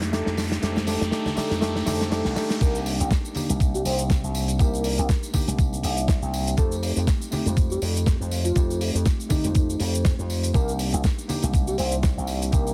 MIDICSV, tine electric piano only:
0, 0, Header, 1, 2, 480
1, 0, Start_track
1, 0, Tempo, 495868
1, 608, Time_signature, 4, 2, 24, 8
1, 12330, End_track
2, 0, Start_track
2, 0, Title_t, "Tine electric piano"
2, 0, Program_c, 0, 4
2, 0, Note_on_c, 0, 57, 94
2, 0, Note_on_c, 0, 62, 86
2, 0, Note_on_c, 0, 63, 82
2, 0, Note_on_c, 0, 67, 103
2, 104, Note_off_c, 0, 57, 0
2, 107, Note_off_c, 0, 62, 0
2, 111, Note_off_c, 0, 63, 0
2, 114, Note_on_c, 0, 57, 92
2, 115, Note_off_c, 0, 67, 0
2, 122, Note_on_c, 0, 62, 82
2, 128, Note_on_c, 0, 63, 83
2, 135, Note_on_c, 0, 67, 101
2, 584, Note_off_c, 0, 57, 0
2, 588, Note_off_c, 0, 62, 0
2, 591, Note_off_c, 0, 63, 0
2, 594, Note_off_c, 0, 67, 0
2, 600, Note_on_c, 0, 57, 92
2, 605, Note_on_c, 0, 62, 85
2, 611, Note_on_c, 0, 63, 81
2, 619, Note_on_c, 0, 67, 102
2, 827, Note_off_c, 0, 57, 0
2, 830, Note_off_c, 0, 62, 0
2, 833, Note_off_c, 0, 63, 0
2, 837, Note_off_c, 0, 67, 0
2, 838, Note_on_c, 0, 57, 88
2, 844, Note_on_c, 0, 62, 84
2, 850, Note_on_c, 0, 63, 83
2, 859, Note_on_c, 0, 67, 104
2, 1066, Note_off_c, 0, 57, 0
2, 1069, Note_off_c, 0, 62, 0
2, 1072, Note_off_c, 0, 63, 0
2, 1076, Note_off_c, 0, 67, 0
2, 1076, Note_on_c, 0, 57, 97
2, 1084, Note_on_c, 0, 62, 86
2, 1089, Note_on_c, 0, 63, 85
2, 1096, Note_on_c, 0, 67, 104
2, 1302, Note_off_c, 0, 57, 0
2, 1309, Note_off_c, 0, 62, 0
2, 1312, Note_off_c, 0, 63, 0
2, 1314, Note_on_c, 0, 57, 98
2, 1315, Note_off_c, 0, 67, 0
2, 1321, Note_on_c, 0, 62, 89
2, 1327, Note_on_c, 0, 63, 86
2, 1333, Note_on_c, 0, 67, 108
2, 1544, Note_off_c, 0, 57, 0
2, 1547, Note_off_c, 0, 62, 0
2, 1551, Note_off_c, 0, 63, 0
2, 1553, Note_off_c, 0, 67, 0
2, 1557, Note_on_c, 0, 57, 99
2, 1563, Note_on_c, 0, 62, 88
2, 1571, Note_on_c, 0, 63, 88
2, 1577, Note_on_c, 0, 67, 107
2, 1785, Note_off_c, 0, 57, 0
2, 1788, Note_off_c, 0, 62, 0
2, 1793, Note_off_c, 0, 63, 0
2, 1796, Note_off_c, 0, 67, 0
2, 1799, Note_on_c, 0, 57, 91
2, 1805, Note_on_c, 0, 62, 83
2, 1813, Note_on_c, 0, 63, 84
2, 1820, Note_on_c, 0, 67, 105
2, 2026, Note_off_c, 0, 57, 0
2, 2030, Note_off_c, 0, 62, 0
2, 2033, Note_off_c, 0, 63, 0
2, 2037, Note_off_c, 0, 67, 0
2, 2038, Note_on_c, 0, 57, 97
2, 2044, Note_on_c, 0, 62, 88
2, 2050, Note_on_c, 0, 63, 87
2, 2059, Note_on_c, 0, 67, 104
2, 2266, Note_off_c, 0, 57, 0
2, 2269, Note_off_c, 0, 62, 0
2, 2272, Note_off_c, 0, 63, 0
2, 2276, Note_off_c, 0, 67, 0
2, 2279, Note_on_c, 0, 57, 97
2, 2286, Note_on_c, 0, 62, 85
2, 2293, Note_on_c, 0, 63, 88
2, 2299, Note_on_c, 0, 67, 102
2, 2507, Note_off_c, 0, 57, 0
2, 2510, Note_off_c, 0, 62, 0
2, 2513, Note_off_c, 0, 63, 0
2, 2517, Note_off_c, 0, 67, 0
2, 2521, Note_on_c, 0, 58, 88
2, 2526, Note_on_c, 0, 62, 79
2, 2533, Note_on_c, 0, 63, 79
2, 2538, Note_on_c, 0, 67, 100
2, 3219, Note_off_c, 0, 58, 0
2, 3221, Note_off_c, 0, 62, 0
2, 3225, Note_off_c, 0, 63, 0
2, 3228, Note_off_c, 0, 67, 0
2, 3241, Note_on_c, 0, 58, 86
2, 3248, Note_on_c, 0, 62, 76
2, 3254, Note_on_c, 0, 63, 78
2, 3260, Note_on_c, 0, 67, 88
2, 4419, Note_off_c, 0, 58, 0
2, 4423, Note_off_c, 0, 62, 0
2, 4425, Note_off_c, 0, 63, 0
2, 4428, Note_off_c, 0, 67, 0
2, 4443, Note_on_c, 0, 58, 86
2, 4450, Note_on_c, 0, 62, 77
2, 4456, Note_on_c, 0, 63, 78
2, 4462, Note_on_c, 0, 67, 95
2, 5140, Note_off_c, 0, 58, 0
2, 5144, Note_off_c, 0, 62, 0
2, 5146, Note_off_c, 0, 63, 0
2, 5149, Note_off_c, 0, 67, 0
2, 5160, Note_on_c, 0, 58, 84
2, 5165, Note_on_c, 0, 62, 79
2, 5171, Note_on_c, 0, 63, 78
2, 5178, Note_on_c, 0, 67, 96
2, 6338, Note_off_c, 0, 58, 0
2, 6341, Note_off_c, 0, 62, 0
2, 6344, Note_off_c, 0, 63, 0
2, 6348, Note_off_c, 0, 67, 0
2, 6359, Note_on_c, 0, 57, 90
2, 6365, Note_on_c, 0, 60, 82
2, 6372, Note_on_c, 0, 63, 83
2, 6378, Note_on_c, 0, 67, 99
2, 7058, Note_off_c, 0, 57, 0
2, 7061, Note_off_c, 0, 60, 0
2, 7064, Note_off_c, 0, 63, 0
2, 7067, Note_off_c, 0, 67, 0
2, 7079, Note_on_c, 0, 57, 83
2, 7086, Note_on_c, 0, 60, 79
2, 7091, Note_on_c, 0, 63, 77
2, 7098, Note_on_c, 0, 67, 91
2, 8258, Note_off_c, 0, 57, 0
2, 8262, Note_off_c, 0, 60, 0
2, 8264, Note_off_c, 0, 63, 0
2, 8268, Note_off_c, 0, 67, 0
2, 8279, Note_on_c, 0, 57, 86
2, 8284, Note_on_c, 0, 60, 78
2, 8291, Note_on_c, 0, 63, 76
2, 8299, Note_on_c, 0, 67, 94
2, 8978, Note_off_c, 0, 57, 0
2, 8980, Note_off_c, 0, 60, 0
2, 8984, Note_off_c, 0, 63, 0
2, 8988, Note_off_c, 0, 67, 0
2, 8995, Note_on_c, 0, 57, 86
2, 9002, Note_on_c, 0, 60, 77
2, 9008, Note_on_c, 0, 63, 80
2, 9014, Note_on_c, 0, 67, 95
2, 10176, Note_off_c, 0, 57, 0
2, 10179, Note_off_c, 0, 60, 0
2, 10183, Note_off_c, 0, 63, 0
2, 10185, Note_off_c, 0, 67, 0
2, 10198, Note_on_c, 0, 58, 88
2, 10205, Note_on_c, 0, 62, 81
2, 10210, Note_on_c, 0, 63, 81
2, 10218, Note_on_c, 0, 67, 102
2, 10897, Note_off_c, 0, 58, 0
2, 10901, Note_off_c, 0, 62, 0
2, 10903, Note_off_c, 0, 63, 0
2, 10907, Note_off_c, 0, 67, 0
2, 10919, Note_on_c, 0, 58, 85
2, 10926, Note_on_c, 0, 62, 77
2, 10931, Note_on_c, 0, 63, 79
2, 10938, Note_on_c, 0, 67, 95
2, 12098, Note_off_c, 0, 58, 0
2, 12101, Note_off_c, 0, 62, 0
2, 12104, Note_off_c, 0, 63, 0
2, 12107, Note_off_c, 0, 67, 0
2, 12117, Note_on_c, 0, 58, 83
2, 12122, Note_on_c, 0, 62, 79
2, 12128, Note_on_c, 0, 63, 77
2, 12135, Note_on_c, 0, 67, 94
2, 12330, Note_off_c, 0, 58, 0
2, 12330, Note_off_c, 0, 62, 0
2, 12330, Note_off_c, 0, 63, 0
2, 12330, Note_off_c, 0, 67, 0
2, 12330, End_track
0, 0, End_of_file